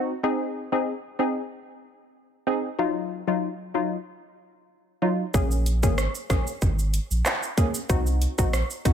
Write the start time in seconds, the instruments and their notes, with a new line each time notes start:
Already playing: synth stab C4 D#4 F#4
0.23 synth stab C4 D#4 G#4
0.72 synth stab C4 D#4 G#4
1.19 synth stab C4 D#4 G#4
2.47 synth stab C4 D#4 G#4
2.79 synth stab F#3 D#4 F4
3.27 synth stab F#3 D#4 F4
3.74 synth stab F#3 D#4 F4
5.02 synth stab F#3 D#4 F4
5.34 sub bass A#1, synth stab A#3 C#4 G#4, kick, shaker
5.51 shaker
5.66 closed hi-hat, shaker
5.83 sub bass G#1, synth stab A#3 C#4 G#4, kick, shaker
5.98 cross-stick, shaker
6.15 shaker
6.30 sub bass A#1, synth stab A#3 C#4 G#4, kick, cross-stick, closed hi-hat, shaker
6.47 shaker
6.62 sub bass G#1, kick, shaker
6.79 shaker
6.94 closed hi-hat, shaker
7.11 sub bass A#1, shaker
7.25 cross-stick, clap, shaker
7.43 shaker
7.58 synth stab A#3 C#4 G#4, kick, closed hi-hat, shaker
7.74 shaker
7.89 sub bass C2, synth stab C4 D#4 F#4, kick, shaker
8.06 shaker
8.22 closed hi-hat, shaker
8.38 sub bass A#1, synth stab C4 D#4 F#4, kick, shaker
8.53 cross-stick, shaker
8.70 shaker
8.85 sub bass C2, synth stab C4 D#4 F#4, kick, closed hi-hat, shaker